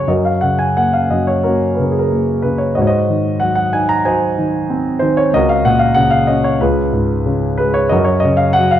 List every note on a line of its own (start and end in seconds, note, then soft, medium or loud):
0.00 0.10 F#5 medium
0.08 1.09 F#2 medium
0.08 1.41 F#4 medium
0.08 1.40 A#4 soft
0.08 0.24 D#5 medium
0.25 0.43 F5 medium
0.41 1.73 C#3 soft
0.41 0.58 F#5 medium
0.59 0.77 G#5 medium
0.77 1.43 A#3 soft
0.77 0.94 F#5 medium
0.93 1.09 F5 medium
1.10 2.40 F#2 soft
1.10 1.28 D#5 medium
1.27 1.43 C#5 medium
1.43 2.10 A#3 soft
1.43 2.73 C#4 soft
1.43 2.73 F#4 soft
1.43 1.72 A#4 medium
1.74 1.83 B4 medium
1.79 2.43 C#3 soft
1.79 1.92 A#4 soft
1.92 2.01 G#4 medium
1.99 2.09 A#4 medium
2.12 2.75 A#3 soft
2.42 2.76 C#3 soft
2.42 2.60 B4 medium
2.58 2.74 C#5 medium
2.75 5.29 G#2 medium
2.75 2.88 F#4 medium
2.75 2.87 C5 soft
2.75 2.82 D#5 medium
2.81 2.89 C#5 medium
2.87 4.14 F#4 medium
2.87 4.04 C5 medium
2.87 3.36 D#5 medium
3.09 4.33 D#3 soft
3.40 4.04 F#3 soft
3.40 3.54 F#5 medium
3.55 3.73 F#5 medium
3.73 4.97 D#4 medium
3.73 3.89 G#5 medium
3.89 4.05 A#5 medium
4.05 5.29 F#3 medium
4.05 4.98 C5 medium
4.05 5.29 D#5 medium
4.05 4.65 G#5 medium
4.38 5.01 D#3 soft
4.70 5.31 C4 soft
4.99 5.32 D#3 medium
4.99 5.15 C5 medium
5.17 5.33 C#5 medium
5.33 6.57 C#2 medium
5.33 6.58 F#4 medium
5.33 6.58 A#4 medium
5.33 5.50 D#5 medium
5.49 5.65 F5 medium
5.64 6.57 A#2 medium
5.64 5.79 F#5 medium
5.79 5.96 F5 medium
5.94 6.58 C#3 medium
5.94 6.12 F#5 medium
6.11 6.28 F5 medium
6.27 6.59 C#4 medium
6.27 6.44 D#5 medium
6.44 6.61 C#5 medium
6.60 7.88 C#2 medium
6.60 7.89 F4 medium
6.60 7.89 G#4 medium
6.60 7.23 B4 medium
6.93 7.89 G#2 medium
7.26 7.90 C#3 medium
7.58 7.91 G#3 medium
7.58 7.74 B4 medium
7.74 7.91 C#5 medium
7.89 8.80 F#2 medium
7.89 8.80 F#4 medium
7.89 8.80 A#4 medium
7.89 8.07 D#5 medium
8.04 8.21 C#5 medium
8.20 8.37 D#5 medium
8.24 8.80 C#3 medium
8.37 8.56 F5 medium
8.53 8.72 F#5 loud
8.58 8.80 F#3 medium
8.71 8.80 F5 medium